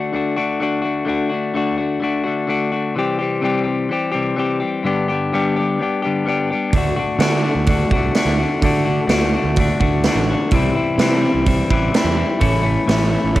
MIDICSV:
0, 0, Header, 1, 4, 480
1, 0, Start_track
1, 0, Tempo, 473560
1, 1065, Time_signature, 4, 2, 24, 8
1, 13582, End_track
2, 0, Start_track
2, 0, Title_t, "Overdriven electric guitar"
2, 0, Program_c, 0, 29
2, 0, Note_on_c, 0, 50, 71
2, 0, Note_on_c, 0, 57, 47
2, 0, Note_on_c, 0, 62, 54
2, 0, Note_on_c, 0, 66, 63
2, 124, Note_off_c, 0, 50, 0
2, 125, Note_off_c, 0, 57, 0
2, 128, Note_on_c, 0, 50, 53
2, 137, Note_off_c, 0, 62, 0
2, 137, Note_on_c, 0, 57, 58
2, 149, Note_off_c, 0, 66, 0
2, 149, Note_on_c, 0, 62, 69
2, 161, Note_on_c, 0, 66, 64
2, 359, Note_off_c, 0, 66, 0
2, 368, Note_off_c, 0, 62, 0
2, 371, Note_on_c, 0, 66, 65
2, 373, Note_off_c, 0, 57, 0
2, 380, Note_on_c, 0, 62, 75
2, 385, Note_on_c, 0, 57, 58
2, 390, Note_off_c, 0, 50, 0
2, 402, Note_on_c, 0, 50, 59
2, 595, Note_off_c, 0, 50, 0
2, 606, Note_off_c, 0, 57, 0
2, 607, Note_on_c, 0, 50, 71
2, 618, Note_on_c, 0, 57, 62
2, 619, Note_off_c, 0, 62, 0
2, 626, Note_off_c, 0, 66, 0
2, 631, Note_on_c, 0, 62, 73
2, 638, Note_on_c, 0, 66, 70
2, 819, Note_off_c, 0, 66, 0
2, 831, Note_on_c, 0, 66, 60
2, 846, Note_off_c, 0, 62, 0
2, 853, Note_off_c, 0, 57, 0
2, 858, Note_on_c, 0, 62, 50
2, 865, Note_on_c, 0, 57, 49
2, 1054, Note_off_c, 0, 50, 0
2, 1066, Note_on_c, 0, 50, 74
2, 1068, Note_off_c, 0, 57, 0
2, 1080, Note_on_c, 0, 57, 73
2, 1085, Note_off_c, 0, 62, 0
2, 1096, Note_off_c, 0, 66, 0
2, 1097, Note_on_c, 0, 62, 73
2, 1108, Note_on_c, 0, 66, 72
2, 1302, Note_off_c, 0, 66, 0
2, 1314, Note_on_c, 0, 66, 59
2, 1325, Note_off_c, 0, 62, 0
2, 1337, Note_on_c, 0, 62, 63
2, 1345, Note_off_c, 0, 57, 0
2, 1357, Note_on_c, 0, 57, 60
2, 1546, Note_off_c, 0, 50, 0
2, 1561, Note_off_c, 0, 57, 0
2, 1561, Note_on_c, 0, 50, 68
2, 1574, Note_off_c, 0, 62, 0
2, 1574, Note_on_c, 0, 57, 77
2, 1580, Note_off_c, 0, 66, 0
2, 1586, Note_on_c, 0, 62, 77
2, 1592, Note_on_c, 0, 66, 88
2, 1791, Note_off_c, 0, 66, 0
2, 1803, Note_on_c, 0, 66, 56
2, 1805, Note_off_c, 0, 62, 0
2, 1817, Note_on_c, 0, 62, 47
2, 1820, Note_off_c, 0, 57, 0
2, 1832, Note_on_c, 0, 57, 50
2, 2015, Note_off_c, 0, 50, 0
2, 2028, Note_on_c, 0, 50, 64
2, 2038, Note_off_c, 0, 57, 0
2, 2050, Note_on_c, 0, 57, 60
2, 2052, Note_off_c, 0, 66, 0
2, 2053, Note_off_c, 0, 62, 0
2, 2065, Note_on_c, 0, 62, 62
2, 2065, Note_on_c, 0, 66, 67
2, 2256, Note_off_c, 0, 66, 0
2, 2268, Note_off_c, 0, 62, 0
2, 2268, Note_on_c, 0, 66, 63
2, 2280, Note_on_c, 0, 62, 57
2, 2283, Note_off_c, 0, 57, 0
2, 2291, Note_off_c, 0, 50, 0
2, 2295, Note_on_c, 0, 57, 55
2, 2303, Note_on_c, 0, 50, 54
2, 2493, Note_off_c, 0, 50, 0
2, 2505, Note_on_c, 0, 50, 67
2, 2508, Note_off_c, 0, 57, 0
2, 2516, Note_off_c, 0, 62, 0
2, 2521, Note_on_c, 0, 57, 65
2, 2524, Note_off_c, 0, 66, 0
2, 2528, Note_on_c, 0, 62, 72
2, 2536, Note_on_c, 0, 66, 74
2, 2743, Note_off_c, 0, 66, 0
2, 2755, Note_off_c, 0, 62, 0
2, 2755, Note_on_c, 0, 66, 54
2, 2768, Note_on_c, 0, 62, 51
2, 2780, Note_off_c, 0, 57, 0
2, 2792, Note_on_c, 0, 57, 45
2, 2971, Note_off_c, 0, 50, 0
2, 2976, Note_off_c, 0, 66, 0
2, 2983, Note_off_c, 0, 62, 0
2, 2989, Note_on_c, 0, 48, 61
2, 2995, Note_off_c, 0, 57, 0
2, 2999, Note_on_c, 0, 52, 70
2, 3019, Note_on_c, 0, 55, 75
2, 3023, Note_on_c, 0, 60, 82
2, 3025, Note_on_c, 0, 67, 82
2, 3226, Note_off_c, 0, 67, 0
2, 3230, Note_on_c, 0, 67, 69
2, 3238, Note_off_c, 0, 60, 0
2, 3250, Note_on_c, 0, 60, 64
2, 3262, Note_off_c, 0, 55, 0
2, 3266, Note_on_c, 0, 55, 54
2, 3447, Note_off_c, 0, 48, 0
2, 3457, Note_off_c, 0, 52, 0
2, 3460, Note_on_c, 0, 48, 69
2, 3469, Note_on_c, 0, 52, 71
2, 3474, Note_off_c, 0, 60, 0
2, 3479, Note_off_c, 0, 55, 0
2, 3483, Note_on_c, 0, 55, 88
2, 3486, Note_on_c, 0, 60, 76
2, 3491, Note_off_c, 0, 67, 0
2, 3495, Note_on_c, 0, 67, 83
2, 3680, Note_off_c, 0, 67, 0
2, 3684, Note_on_c, 0, 67, 57
2, 3694, Note_off_c, 0, 60, 0
2, 3706, Note_on_c, 0, 60, 52
2, 3723, Note_off_c, 0, 55, 0
2, 3727, Note_on_c, 0, 55, 46
2, 3931, Note_off_c, 0, 52, 0
2, 3943, Note_off_c, 0, 48, 0
2, 3943, Note_on_c, 0, 52, 57
2, 3949, Note_off_c, 0, 55, 0
2, 3955, Note_off_c, 0, 60, 0
2, 3961, Note_on_c, 0, 55, 62
2, 3966, Note_off_c, 0, 67, 0
2, 3967, Note_on_c, 0, 60, 68
2, 3978, Note_on_c, 0, 67, 63
2, 4159, Note_off_c, 0, 67, 0
2, 4166, Note_off_c, 0, 60, 0
2, 4171, Note_on_c, 0, 67, 70
2, 4178, Note_on_c, 0, 60, 66
2, 4183, Note_off_c, 0, 55, 0
2, 4187, Note_off_c, 0, 52, 0
2, 4195, Note_on_c, 0, 55, 59
2, 4199, Note_on_c, 0, 52, 63
2, 4205, Note_on_c, 0, 48, 60
2, 4407, Note_off_c, 0, 52, 0
2, 4418, Note_off_c, 0, 55, 0
2, 4419, Note_on_c, 0, 52, 58
2, 4430, Note_on_c, 0, 55, 74
2, 4433, Note_off_c, 0, 60, 0
2, 4441, Note_off_c, 0, 67, 0
2, 4445, Note_on_c, 0, 60, 71
2, 4453, Note_on_c, 0, 67, 79
2, 4651, Note_off_c, 0, 67, 0
2, 4663, Note_on_c, 0, 67, 56
2, 4665, Note_off_c, 0, 60, 0
2, 4675, Note_off_c, 0, 48, 0
2, 4677, Note_on_c, 0, 60, 52
2, 4681, Note_off_c, 0, 55, 0
2, 4693, Note_on_c, 0, 55, 51
2, 4888, Note_off_c, 0, 52, 0
2, 4890, Note_off_c, 0, 67, 0
2, 4896, Note_on_c, 0, 43, 79
2, 4897, Note_off_c, 0, 60, 0
2, 4905, Note_off_c, 0, 55, 0
2, 4909, Note_on_c, 0, 50, 80
2, 4917, Note_on_c, 0, 55, 71
2, 4923, Note_on_c, 0, 59, 84
2, 4927, Note_on_c, 0, 62, 73
2, 4933, Note_on_c, 0, 67, 75
2, 5140, Note_off_c, 0, 67, 0
2, 5152, Note_on_c, 0, 67, 60
2, 5158, Note_off_c, 0, 62, 0
2, 5162, Note_off_c, 0, 59, 0
2, 5162, Note_on_c, 0, 62, 64
2, 5174, Note_on_c, 0, 59, 56
2, 5176, Note_off_c, 0, 55, 0
2, 5188, Note_on_c, 0, 55, 54
2, 5381, Note_off_c, 0, 43, 0
2, 5387, Note_off_c, 0, 50, 0
2, 5397, Note_on_c, 0, 43, 81
2, 5399, Note_off_c, 0, 59, 0
2, 5401, Note_off_c, 0, 55, 0
2, 5405, Note_on_c, 0, 50, 74
2, 5411, Note_on_c, 0, 59, 81
2, 5414, Note_off_c, 0, 67, 0
2, 5414, Note_on_c, 0, 55, 87
2, 5418, Note_off_c, 0, 62, 0
2, 5422, Note_on_c, 0, 62, 88
2, 5426, Note_on_c, 0, 67, 83
2, 5625, Note_off_c, 0, 67, 0
2, 5638, Note_on_c, 0, 67, 63
2, 5653, Note_off_c, 0, 59, 0
2, 5656, Note_off_c, 0, 62, 0
2, 5660, Note_on_c, 0, 62, 54
2, 5664, Note_off_c, 0, 55, 0
2, 5665, Note_on_c, 0, 59, 52
2, 5676, Note_on_c, 0, 55, 50
2, 5858, Note_off_c, 0, 55, 0
2, 5870, Note_on_c, 0, 55, 55
2, 5871, Note_off_c, 0, 43, 0
2, 5872, Note_off_c, 0, 59, 0
2, 5875, Note_off_c, 0, 50, 0
2, 5884, Note_on_c, 0, 59, 66
2, 5892, Note_off_c, 0, 62, 0
2, 5894, Note_off_c, 0, 67, 0
2, 5896, Note_on_c, 0, 62, 68
2, 5906, Note_on_c, 0, 67, 71
2, 6092, Note_off_c, 0, 67, 0
2, 6104, Note_on_c, 0, 67, 77
2, 6115, Note_off_c, 0, 59, 0
2, 6116, Note_off_c, 0, 62, 0
2, 6120, Note_off_c, 0, 55, 0
2, 6120, Note_on_c, 0, 62, 64
2, 6127, Note_on_c, 0, 59, 53
2, 6133, Note_on_c, 0, 55, 63
2, 6142, Note_on_c, 0, 50, 54
2, 6145, Note_on_c, 0, 43, 59
2, 6326, Note_off_c, 0, 55, 0
2, 6339, Note_off_c, 0, 59, 0
2, 6339, Note_on_c, 0, 55, 59
2, 6351, Note_on_c, 0, 59, 75
2, 6364, Note_off_c, 0, 62, 0
2, 6368, Note_off_c, 0, 67, 0
2, 6368, Note_on_c, 0, 62, 75
2, 6380, Note_on_c, 0, 67, 69
2, 6578, Note_off_c, 0, 67, 0
2, 6591, Note_on_c, 0, 67, 56
2, 6603, Note_off_c, 0, 50, 0
2, 6603, Note_off_c, 0, 62, 0
2, 6605, Note_off_c, 0, 43, 0
2, 6605, Note_off_c, 0, 59, 0
2, 6607, Note_on_c, 0, 62, 58
2, 6617, Note_on_c, 0, 59, 48
2, 6622, Note_off_c, 0, 55, 0
2, 6634, Note_on_c, 0, 55, 48
2, 6813, Note_off_c, 0, 67, 0
2, 6818, Note_off_c, 0, 55, 0
2, 6822, Note_on_c, 0, 50, 72
2, 6826, Note_off_c, 0, 59, 0
2, 6841, Note_on_c, 0, 57, 71
2, 6851, Note_off_c, 0, 62, 0
2, 6855, Note_on_c, 0, 62, 75
2, 6869, Note_on_c, 0, 66, 74
2, 7055, Note_off_c, 0, 66, 0
2, 7059, Note_on_c, 0, 66, 69
2, 7082, Note_off_c, 0, 62, 0
2, 7086, Note_on_c, 0, 62, 61
2, 7090, Note_off_c, 0, 57, 0
2, 7094, Note_on_c, 0, 57, 46
2, 7280, Note_off_c, 0, 50, 0
2, 7284, Note_on_c, 0, 50, 79
2, 7291, Note_off_c, 0, 57, 0
2, 7295, Note_on_c, 0, 57, 82
2, 7298, Note_off_c, 0, 62, 0
2, 7302, Note_on_c, 0, 62, 79
2, 7312, Note_off_c, 0, 66, 0
2, 7316, Note_on_c, 0, 66, 85
2, 7530, Note_off_c, 0, 66, 0
2, 7534, Note_on_c, 0, 66, 52
2, 7546, Note_off_c, 0, 62, 0
2, 7550, Note_on_c, 0, 62, 52
2, 7560, Note_off_c, 0, 57, 0
2, 7564, Note_on_c, 0, 57, 45
2, 7765, Note_off_c, 0, 50, 0
2, 7769, Note_off_c, 0, 57, 0
2, 7769, Note_on_c, 0, 50, 61
2, 7780, Note_off_c, 0, 62, 0
2, 7781, Note_on_c, 0, 57, 57
2, 7792, Note_on_c, 0, 62, 68
2, 7799, Note_off_c, 0, 66, 0
2, 7811, Note_on_c, 0, 66, 68
2, 8020, Note_off_c, 0, 66, 0
2, 8031, Note_off_c, 0, 62, 0
2, 8032, Note_on_c, 0, 66, 76
2, 8043, Note_on_c, 0, 62, 64
2, 8050, Note_off_c, 0, 57, 0
2, 8056, Note_off_c, 0, 50, 0
2, 8062, Note_on_c, 0, 57, 58
2, 8069, Note_on_c, 0, 50, 57
2, 8248, Note_off_c, 0, 50, 0
2, 8261, Note_on_c, 0, 50, 66
2, 8263, Note_off_c, 0, 57, 0
2, 8275, Note_on_c, 0, 57, 72
2, 8278, Note_off_c, 0, 62, 0
2, 8283, Note_off_c, 0, 66, 0
2, 8290, Note_on_c, 0, 62, 80
2, 8295, Note_on_c, 0, 66, 75
2, 8489, Note_off_c, 0, 66, 0
2, 8501, Note_on_c, 0, 66, 58
2, 8510, Note_off_c, 0, 62, 0
2, 8522, Note_on_c, 0, 62, 52
2, 8532, Note_off_c, 0, 57, 0
2, 8545, Note_on_c, 0, 57, 46
2, 8725, Note_off_c, 0, 50, 0
2, 8737, Note_off_c, 0, 57, 0
2, 8737, Note_on_c, 0, 50, 68
2, 8749, Note_on_c, 0, 57, 81
2, 8751, Note_off_c, 0, 62, 0
2, 8760, Note_off_c, 0, 66, 0
2, 8763, Note_on_c, 0, 62, 84
2, 8773, Note_on_c, 0, 66, 80
2, 8960, Note_off_c, 0, 66, 0
2, 8972, Note_on_c, 0, 66, 74
2, 8985, Note_off_c, 0, 62, 0
2, 8997, Note_on_c, 0, 62, 58
2, 9000, Note_off_c, 0, 57, 0
2, 9013, Note_on_c, 0, 57, 50
2, 9186, Note_off_c, 0, 50, 0
2, 9198, Note_on_c, 0, 50, 71
2, 9199, Note_off_c, 0, 57, 0
2, 9211, Note_on_c, 0, 57, 92
2, 9215, Note_off_c, 0, 62, 0
2, 9227, Note_on_c, 0, 62, 84
2, 9229, Note_off_c, 0, 66, 0
2, 9241, Note_on_c, 0, 66, 80
2, 9456, Note_off_c, 0, 66, 0
2, 9468, Note_on_c, 0, 66, 59
2, 9476, Note_off_c, 0, 62, 0
2, 9488, Note_on_c, 0, 62, 53
2, 9496, Note_off_c, 0, 57, 0
2, 9508, Note_on_c, 0, 57, 54
2, 9691, Note_off_c, 0, 50, 0
2, 9704, Note_off_c, 0, 57, 0
2, 9708, Note_on_c, 0, 50, 59
2, 9715, Note_off_c, 0, 62, 0
2, 9716, Note_on_c, 0, 57, 60
2, 9727, Note_on_c, 0, 62, 75
2, 9729, Note_off_c, 0, 66, 0
2, 9742, Note_on_c, 0, 66, 59
2, 9919, Note_off_c, 0, 66, 0
2, 9932, Note_on_c, 0, 66, 72
2, 9933, Note_off_c, 0, 62, 0
2, 9941, Note_off_c, 0, 57, 0
2, 9945, Note_on_c, 0, 62, 63
2, 9947, Note_off_c, 0, 50, 0
2, 9953, Note_on_c, 0, 57, 63
2, 9959, Note_on_c, 0, 50, 54
2, 10173, Note_off_c, 0, 50, 0
2, 10181, Note_off_c, 0, 57, 0
2, 10185, Note_on_c, 0, 50, 70
2, 10193, Note_on_c, 0, 57, 75
2, 10195, Note_off_c, 0, 62, 0
2, 10207, Note_on_c, 0, 62, 68
2, 10211, Note_off_c, 0, 66, 0
2, 10223, Note_on_c, 0, 66, 70
2, 10426, Note_off_c, 0, 66, 0
2, 10438, Note_on_c, 0, 66, 57
2, 10439, Note_off_c, 0, 62, 0
2, 10451, Note_on_c, 0, 62, 55
2, 10462, Note_off_c, 0, 57, 0
2, 10474, Note_on_c, 0, 57, 54
2, 10650, Note_off_c, 0, 50, 0
2, 10657, Note_off_c, 0, 66, 0
2, 10663, Note_off_c, 0, 62, 0
2, 10668, Note_on_c, 0, 48, 79
2, 10673, Note_on_c, 0, 52, 84
2, 10675, Note_off_c, 0, 57, 0
2, 10683, Note_on_c, 0, 55, 76
2, 10687, Note_on_c, 0, 60, 82
2, 10698, Note_on_c, 0, 64, 75
2, 10894, Note_off_c, 0, 64, 0
2, 10898, Note_on_c, 0, 64, 78
2, 10901, Note_off_c, 0, 60, 0
2, 10913, Note_on_c, 0, 60, 62
2, 10916, Note_off_c, 0, 55, 0
2, 10929, Note_on_c, 0, 55, 52
2, 11133, Note_off_c, 0, 48, 0
2, 11145, Note_on_c, 0, 48, 82
2, 11149, Note_off_c, 0, 52, 0
2, 11149, Note_off_c, 0, 55, 0
2, 11153, Note_on_c, 0, 52, 78
2, 11155, Note_off_c, 0, 60, 0
2, 11161, Note_on_c, 0, 55, 81
2, 11167, Note_on_c, 0, 60, 92
2, 11170, Note_off_c, 0, 64, 0
2, 11174, Note_on_c, 0, 64, 87
2, 11367, Note_off_c, 0, 64, 0
2, 11371, Note_on_c, 0, 64, 60
2, 11384, Note_off_c, 0, 60, 0
2, 11396, Note_on_c, 0, 60, 54
2, 11399, Note_off_c, 0, 55, 0
2, 11412, Note_on_c, 0, 55, 51
2, 11608, Note_off_c, 0, 52, 0
2, 11612, Note_on_c, 0, 52, 65
2, 11618, Note_off_c, 0, 55, 0
2, 11623, Note_off_c, 0, 60, 0
2, 11624, Note_off_c, 0, 48, 0
2, 11630, Note_on_c, 0, 55, 65
2, 11635, Note_on_c, 0, 60, 72
2, 11636, Note_off_c, 0, 64, 0
2, 11649, Note_on_c, 0, 64, 60
2, 11853, Note_off_c, 0, 64, 0
2, 11861, Note_off_c, 0, 60, 0
2, 11865, Note_off_c, 0, 55, 0
2, 11865, Note_on_c, 0, 64, 70
2, 11873, Note_off_c, 0, 52, 0
2, 11873, Note_on_c, 0, 60, 62
2, 11877, Note_on_c, 0, 55, 59
2, 11885, Note_on_c, 0, 52, 65
2, 11896, Note_on_c, 0, 48, 60
2, 12084, Note_off_c, 0, 52, 0
2, 12096, Note_on_c, 0, 52, 62
2, 12101, Note_off_c, 0, 55, 0
2, 12113, Note_on_c, 0, 55, 70
2, 12114, Note_off_c, 0, 60, 0
2, 12125, Note_off_c, 0, 64, 0
2, 12126, Note_on_c, 0, 60, 70
2, 12137, Note_on_c, 0, 64, 77
2, 12316, Note_off_c, 0, 64, 0
2, 12328, Note_on_c, 0, 64, 64
2, 12340, Note_off_c, 0, 60, 0
2, 12350, Note_off_c, 0, 55, 0
2, 12352, Note_on_c, 0, 60, 49
2, 12360, Note_off_c, 0, 48, 0
2, 12362, Note_on_c, 0, 55, 51
2, 12554, Note_off_c, 0, 52, 0
2, 12558, Note_on_c, 0, 45, 78
2, 12561, Note_off_c, 0, 64, 0
2, 12566, Note_on_c, 0, 52, 72
2, 12569, Note_off_c, 0, 55, 0
2, 12573, Note_off_c, 0, 60, 0
2, 12573, Note_on_c, 0, 57, 74
2, 12586, Note_on_c, 0, 61, 77
2, 12589, Note_on_c, 0, 64, 85
2, 12779, Note_off_c, 0, 64, 0
2, 12791, Note_on_c, 0, 64, 73
2, 12792, Note_off_c, 0, 61, 0
2, 12804, Note_on_c, 0, 61, 64
2, 12814, Note_off_c, 0, 57, 0
2, 12826, Note_on_c, 0, 57, 52
2, 13022, Note_off_c, 0, 45, 0
2, 13034, Note_on_c, 0, 45, 77
2, 13039, Note_off_c, 0, 52, 0
2, 13045, Note_off_c, 0, 57, 0
2, 13049, Note_off_c, 0, 61, 0
2, 13051, Note_on_c, 0, 52, 80
2, 13057, Note_on_c, 0, 57, 86
2, 13062, Note_on_c, 0, 61, 82
2, 13068, Note_off_c, 0, 64, 0
2, 13080, Note_on_c, 0, 64, 82
2, 13272, Note_off_c, 0, 64, 0
2, 13284, Note_off_c, 0, 61, 0
2, 13285, Note_on_c, 0, 64, 59
2, 13296, Note_on_c, 0, 61, 55
2, 13311, Note_off_c, 0, 57, 0
2, 13323, Note_on_c, 0, 57, 49
2, 13506, Note_off_c, 0, 52, 0
2, 13518, Note_on_c, 0, 52, 60
2, 13522, Note_off_c, 0, 57, 0
2, 13526, Note_off_c, 0, 61, 0
2, 13529, Note_off_c, 0, 45, 0
2, 13534, Note_on_c, 0, 57, 70
2, 13539, Note_on_c, 0, 61, 69
2, 13541, Note_off_c, 0, 64, 0
2, 13582, Note_off_c, 0, 52, 0
2, 13582, Note_off_c, 0, 57, 0
2, 13582, Note_off_c, 0, 61, 0
2, 13582, End_track
3, 0, Start_track
3, 0, Title_t, "Fingered electric bass"
3, 0, Program_c, 1, 33
3, 6820, Note_on_c, 1, 38, 70
3, 7003, Note_off_c, 1, 38, 0
3, 7283, Note_on_c, 1, 50, 84
3, 7563, Note_off_c, 1, 50, 0
3, 7652, Note_on_c, 1, 38, 62
3, 7928, Note_off_c, 1, 38, 0
3, 8011, Note_on_c, 1, 36, 77
3, 8197, Note_off_c, 1, 36, 0
3, 8364, Note_on_c, 1, 38, 74
3, 8552, Note_off_c, 1, 38, 0
3, 8736, Note_on_c, 1, 50, 78
3, 9101, Note_off_c, 1, 50, 0
3, 9202, Note_on_c, 1, 38, 76
3, 9482, Note_off_c, 1, 38, 0
3, 9566, Note_on_c, 1, 38, 68
3, 9845, Note_off_c, 1, 38, 0
3, 9933, Note_on_c, 1, 38, 83
3, 10209, Note_off_c, 1, 38, 0
3, 10288, Note_on_c, 1, 33, 70
3, 10475, Note_off_c, 1, 33, 0
3, 10659, Note_on_c, 1, 36, 79
3, 10842, Note_off_c, 1, 36, 0
3, 11127, Note_on_c, 1, 48, 92
3, 11405, Note_off_c, 1, 48, 0
3, 11496, Note_on_c, 1, 36, 71
3, 11771, Note_off_c, 1, 36, 0
3, 11861, Note_on_c, 1, 33, 80
3, 12043, Note_off_c, 1, 33, 0
3, 12204, Note_on_c, 1, 40, 81
3, 12393, Note_off_c, 1, 40, 0
3, 12583, Note_on_c, 1, 33, 78
3, 12945, Note_off_c, 1, 33, 0
3, 13052, Note_on_c, 1, 33, 76
3, 13328, Note_off_c, 1, 33, 0
3, 13418, Note_on_c, 1, 33, 65
3, 13582, Note_off_c, 1, 33, 0
3, 13582, End_track
4, 0, Start_track
4, 0, Title_t, "Drums"
4, 6820, Note_on_c, 9, 46, 45
4, 6822, Note_on_c, 9, 36, 91
4, 6921, Note_off_c, 9, 46, 0
4, 6923, Note_off_c, 9, 36, 0
4, 7296, Note_on_c, 9, 46, 47
4, 7304, Note_on_c, 9, 38, 105
4, 7397, Note_off_c, 9, 46, 0
4, 7405, Note_off_c, 9, 38, 0
4, 7768, Note_on_c, 9, 46, 42
4, 7777, Note_on_c, 9, 36, 90
4, 7869, Note_off_c, 9, 46, 0
4, 7879, Note_off_c, 9, 36, 0
4, 8018, Note_on_c, 9, 36, 75
4, 8120, Note_off_c, 9, 36, 0
4, 8257, Note_on_c, 9, 46, 44
4, 8265, Note_on_c, 9, 38, 92
4, 8358, Note_off_c, 9, 46, 0
4, 8366, Note_off_c, 9, 38, 0
4, 8739, Note_on_c, 9, 46, 46
4, 8741, Note_on_c, 9, 36, 90
4, 8840, Note_off_c, 9, 46, 0
4, 8842, Note_off_c, 9, 36, 0
4, 9214, Note_on_c, 9, 46, 46
4, 9222, Note_on_c, 9, 38, 108
4, 9315, Note_off_c, 9, 46, 0
4, 9323, Note_off_c, 9, 38, 0
4, 9690, Note_on_c, 9, 46, 44
4, 9700, Note_on_c, 9, 36, 93
4, 9791, Note_off_c, 9, 46, 0
4, 9801, Note_off_c, 9, 36, 0
4, 9940, Note_on_c, 9, 36, 73
4, 10041, Note_off_c, 9, 36, 0
4, 10171, Note_on_c, 9, 46, 45
4, 10179, Note_on_c, 9, 38, 98
4, 10272, Note_off_c, 9, 46, 0
4, 10280, Note_off_c, 9, 38, 0
4, 10650, Note_on_c, 9, 46, 43
4, 10660, Note_on_c, 9, 36, 97
4, 10751, Note_off_c, 9, 46, 0
4, 10762, Note_off_c, 9, 36, 0
4, 11138, Note_on_c, 9, 46, 43
4, 11146, Note_on_c, 9, 38, 101
4, 11239, Note_off_c, 9, 46, 0
4, 11247, Note_off_c, 9, 38, 0
4, 11616, Note_on_c, 9, 46, 45
4, 11621, Note_on_c, 9, 36, 82
4, 11717, Note_off_c, 9, 46, 0
4, 11722, Note_off_c, 9, 36, 0
4, 11863, Note_on_c, 9, 36, 70
4, 11965, Note_off_c, 9, 36, 0
4, 12102, Note_on_c, 9, 46, 45
4, 12110, Note_on_c, 9, 38, 103
4, 12204, Note_off_c, 9, 46, 0
4, 12212, Note_off_c, 9, 38, 0
4, 12576, Note_on_c, 9, 46, 46
4, 12582, Note_on_c, 9, 36, 89
4, 12677, Note_off_c, 9, 46, 0
4, 12684, Note_off_c, 9, 36, 0
4, 13062, Note_on_c, 9, 46, 46
4, 13070, Note_on_c, 9, 38, 109
4, 13164, Note_off_c, 9, 46, 0
4, 13172, Note_off_c, 9, 38, 0
4, 13540, Note_on_c, 9, 46, 46
4, 13542, Note_on_c, 9, 36, 91
4, 13582, Note_off_c, 9, 36, 0
4, 13582, Note_off_c, 9, 46, 0
4, 13582, End_track
0, 0, End_of_file